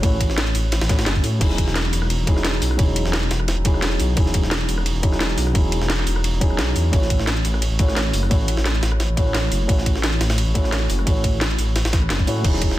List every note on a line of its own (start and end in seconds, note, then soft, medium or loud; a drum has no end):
0.00 0.28 A1 loud
0.00 0.88 A3 medium
0.00 0.02 C#4 medium
0.00 0.87 C#4 medium
0.00 0.03 E4 medium
0.00 0.88 E4 medium
0.00 0.04 F#4 medium
0.00 0.05 C#5 medium
0.00 kick loud
0.00 closed hi-hat medium
0.00 ride medium
0.04 0.88 F#4 medium
0.04 0.89 C#5 medium
0.20 kick medium
0.20 closed hi-hat loud
0.20 ride medium
0.29 0.54 A1 medium
0.29 snare medium
0.38 snare loud
0.38 closed hi-hat medium
0.38 ride medium
0.47 ride soft
0.55 0.80 A1 medium
0.55 open hi-hat medium
0.55 ride medium
0.72 snare loud
0.72 closed hi-hat medium
0.72 ride medium
0.81 1.06 A1 medium
0.81 snare loud
0.81 ride medium
0.88 0.94 A3 medium
0.88 0.94 C#4 medium
0.88 0.94 E4 medium
0.88 0.95 F#4 medium
0.88 0.95 C#5 medium
0.88 kick loud
0.88 snare soft
0.88 snare loud
0.88 closed hi-hat loud
0.88 ride medium
0.98 cross-stick soft
0.98 snare loud
0.98 ride medium
1.06 1.22 F#1 loud
1.06 snare loud
1.06 closed hi-hat medium
1.06 ride medium
1.16 kick medium
1.24 1.40 A2 loud
1.24 open hi-hat medium
1.24 ride medium
1.39 1.66 E1 loud
1.39 2.24 F#3 medium
1.39 2.25 C#4 medium
1.39 2.25 D#4 medium
1.39 2.26 E4 medium
1.39 kick loud
1.39 closed hi-hat medium
1.39 crash medium
1.39 ride medium
1.43 2.27 G#4 medium
1.50 snare soft
1.58 kick medium
1.58 closed hi-hat loud
1.58 ride medium
1.67 1.92 E1 medium
1.67 snare soft
1.76 snare loud
1.76 closed hi-hat medium
1.76 ride medium
1.85 ride soft
1.93 2.18 E1 medium
1.93 open hi-hat medium
1.93 ride medium
2.02 cross-stick medium
2.10 closed hi-hat medium
2.10 ride medium
2.19 2.43 E1 medium
2.26 2.32 F#3 medium
2.26 2.32 C#4 medium
2.26 2.32 D#4 medium
2.26 2.32 E4 medium
2.26 2.33 G#4 medium
2.26 kick loud
2.26 closed hi-hat loud
2.26 ride medium
2.36 cross-stick soft
2.36 snare soft
2.45 2.60 E1 loud
2.45 snare loud
2.45 closed hi-hat medium
2.45 ride medium
2.62 2.78 B1 loud
2.62 open hi-hat medium
2.71 cross-stick soft
2.77 3.04 E1 loud
2.77 3.62 F#3 medium
2.77 3.63 C#4 medium
2.77 3.63 D#4 medium
2.77 3.64 E4 medium
2.77 kick loud
2.77 closed hi-hat medium
2.77 ride medium
2.81 3.65 G#4 medium
2.96 closed hi-hat loud
2.96 ride medium
3.05 3.30 E1 medium
3.05 snare medium
3.13 snare loud
3.13 closed hi-hat medium
3.13 ride medium
3.23 ride soft
3.31 3.56 E1 medium
3.31 snare loud
3.31 open hi-hat medium
3.31 ride medium
3.40 cross-stick medium
3.48 snare loud
3.48 closed hi-hat medium
3.48 ride medium
3.57 3.81 E1 medium
3.64 3.70 F#3 medium
3.64 3.70 C#4 medium
3.64 3.70 D#4 medium
3.64 3.70 E4 medium
3.64 3.71 G#4 medium
3.64 kick loud
3.64 closed hi-hat loud
3.64 ride medium
3.74 cross-stick soft
3.82 3.98 E1 medium
3.82 snare loud
3.82 closed hi-hat medium
3.82 ride medium
4.00 4.16 B1 loud
4.00 open hi-hat medium
4.00 ride medium
4.15 4.42 E1 loud
4.15 5.00 F#3 medium
4.15 5.01 C#4 medium
4.15 5.01 D#4 medium
4.15 5.02 E4 medium
4.15 kick loud
4.15 closed hi-hat medium
4.15 ride medium
4.19 5.02 G#4 medium
4.26 snare soft
4.34 kick medium
4.34 closed hi-hat medium
4.34 ride medium
4.43 4.68 E1 medium
4.43 snare soft
4.51 snare loud
4.51 closed hi-hat medium
4.51 ride medium
4.61 ride soft
4.69 4.94 E1 medium
4.69 open hi-hat medium
4.69 ride medium
4.78 cross-stick soft
4.86 closed hi-hat medium
4.86 ride medium
4.95 5.19 E1 medium
5.02 5.07 F#3 medium
5.02 5.08 C#4 medium
5.02 5.08 D#4 medium
5.02 5.08 E4 medium
5.02 5.09 G#4 medium
5.02 kick loud
5.02 closed hi-hat medium
5.02 ride medium
5.12 cross-stick soft
5.12 snare soft
5.20 5.36 E1 loud
5.20 snare loud
5.20 closed hi-hat medium
5.20 ride medium
5.38 5.53 B1 loud
5.38 open hi-hat medium
5.47 cross-stick soft
5.53 5.80 E1 loud
5.53 6.38 F#3 medium
5.53 6.39 C#4 medium
5.53 6.39 D#4 medium
5.53 6.40 E4 medium
5.53 kick loud
5.53 closed hi-hat medium
5.53 ride medium
5.57 6.41 G#4 medium
5.72 closed hi-hat medium
5.72 ride medium
5.81 6.05 E1 medium
5.81 snare medium
5.90 snare loud
5.90 closed hi-hat medium
5.90 ride medium
5.99 snare soft
5.99 ride soft
6.07 6.32 E1 medium
6.07 open hi-hat medium
6.07 ride medium
6.16 cross-stick soft
6.24 closed hi-hat medium
6.24 ride medium
6.33 6.60 E1 medium
6.40 6.45 F#3 medium
6.40 6.46 C#4 medium
6.40 6.46 D#4 medium
6.40 6.46 E4 medium
6.40 6.47 G#4 medium
6.40 kick loud
6.40 closed hi-hat medium
6.40 ride medium
6.50 cross-stick soft
6.59 6.74 B1 medium
6.59 snare loud
6.59 closed hi-hat medium
6.59 ride medium
6.76 6.92 E2 loud
6.76 open hi-hat medium
6.76 ride medium
6.91 7.18 A1 loud
6.91 7.76 A3 medium
6.91 7.77 C#4 medium
6.91 7.77 E4 medium
6.91 7.78 F#4 medium
6.91 kick loud
6.91 closed hi-hat medium
6.91 ride medium
6.96 7.79 C#5 medium
7.02 snare soft
7.10 kick medium
7.10 closed hi-hat medium
7.10 ride medium
7.19 7.43 A1 medium
7.19 snare soft
7.27 snare loud
7.27 closed hi-hat medium
7.27 ride medium
7.37 ride soft
7.45 7.70 A1 medium
7.45 open hi-hat medium
7.45 ride medium
7.54 cross-stick soft
7.62 closed hi-hat medium
7.62 ride medium
7.71 7.95 A1 medium
7.78 7.83 A3 medium
7.78 7.84 C#4 medium
7.78 7.84 E4 medium
7.78 7.84 F#4 medium
7.78 7.85 C#5 medium
7.78 kick loud
7.78 closed hi-hat medium
7.78 ride medium
7.88 cross-stick soft
7.88 snare soft
7.96 8.12 A1 loud
7.96 snare loud
7.96 closed hi-hat medium
7.96 ride medium
8.14 8.29 F#1 loud
8.14 open hi-hat medium
8.23 cross-stick soft
8.29 8.56 A1 loud
8.29 9.14 A3 medium
8.29 9.15 C#4 medium
8.29 9.15 E4 medium
8.29 9.16 F#4 medium
8.29 kick loud
8.29 closed hi-hat medium
8.29 ride medium
8.33 9.16 C#5 medium
8.48 closed hi-hat loud
8.48 ride medium
8.57 8.81 A1 medium
8.57 snare medium
8.66 snare loud
8.66 closed hi-hat medium
8.66 ride medium
8.75 ride soft
8.83 9.08 A1 medium
8.83 snare loud
8.83 open hi-hat medium
8.83 ride medium
8.92 cross-stick soft
9.00 snare loud
9.00 closed hi-hat medium
9.00 ride medium
9.09 9.33 A1 medium
9.16 9.21 A3 medium
9.16 9.22 C#4 medium
9.16 9.22 E4 medium
9.16 9.22 F#4 medium
9.16 9.22 C#5 loud
9.16 kick loud
9.16 closed hi-hat medium
9.16 ride medium
9.26 cross-stick soft
9.34 9.50 A1 medium
9.34 snare loud
9.34 closed hi-hat medium
9.34 ride medium
9.52 9.67 F#1 loud
9.52 open hi-hat medium
9.52 ride medium
9.67 9.94 A1 loud
9.67 10.52 A3 medium
9.67 10.53 C#4 medium
9.67 10.53 E4 medium
9.67 10.54 F#4 medium
9.67 kick loud
9.67 closed hi-hat medium
9.67 ride medium
9.71 10.54 C#5 medium
9.78 snare soft
9.86 kick medium
9.86 closed hi-hat loud
9.86 ride medium
9.95 10.19 A1 medium
9.95 snare soft
10.03 snare loud
10.03 closed hi-hat medium
10.03 ride medium
10.13 ride soft
10.21 10.46 A1 medium
10.21 snare loud
10.21 open hi-hat medium
10.21 ride medium
10.30 cross-stick soft
10.30 snare loud
10.30 ride medium
10.38 closed hi-hat medium
10.38 ride medium
10.47 10.71 A1 medium
10.54 10.59 A3 medium
10.54 10.59 C#4 medium
10.54 10.60 E4 medium
10.54 10.60 F#4 medium
10.54 10.60 C#5 loud
10.54 kick loud
10.54 closed hi-hat loud
10.54 ride medium
10.64 cross-stick soft
10.64 snare soft
10.72 10.88 A1 medium
10.72 snare loud
10.72 closed hi-hat medium
10.72 ride medium
10.90 11.05 F#1 loud
10.90 open hi-hat medium
10.99 cross-stick soft
11.05 11.32 A1 loud
11.05 11.90 A3 medium
11.05 11.91 C#4 medium
11.05 11.91 E4 medium
11.05 11.92 F#4 medium
11.05 kick loud
11.05 closed hi-hat medium
11.05 ride medium
11.09 11.92 C#5 medium
11.24 kick medium
11.24 closed hi-hat loud
11.24 ride medium
11.33 11.57 A1 medium
11.41 snare loud
11.41 closed hi-hat medium
11.41 ride medium
11.51 ride soft
11.59 11.83 A1 medium
11.59 open hi-hat medium
11.59 ride medium
11.76 snare loud
11.76 closed hi-hat medium
11.76 ride medium
11.85 12.09 A1 medium
11.85 snare loud
11.85 ride medium
11.93 kick loud
11.93 snare soft
11.93 snare loud
11.93 closed hi-hat loud
11.93 ride medium
12.02 cross-stick soft
12.10 12.26 F#1 loud
12.10 snare loud
12.10 closed hi-hat medium
12.10 ride medium
12.19 kick medium
12.27 12.43 A2 loud
12.27 12.34 A3 medium
12.27 12.35 C#4 medium
12.27 12.35 E4 medium
12.27 12.35 F#4 medium
12.27 12.36 C#5 medium
12.27 open hi-hat medium
12.27 ride medium
12.43 12.69 E1 loud
12.43 12.79 F#3 medium
12.43 12.79 C#4 medium
12.43 12.79 D#4 medium
12.43 12.79 E4 medium
12.43 kick loud
12.43 closed hi-hat medium
12.43 ride medium
12.43 crash loud
12.47 12.79 G#4 medium
12.54 snare soft
12.62 kick medium
12.62 closed hi-hat loud
12.62 ride medium
12.71 12.79 E1 medium
12.71 snare soft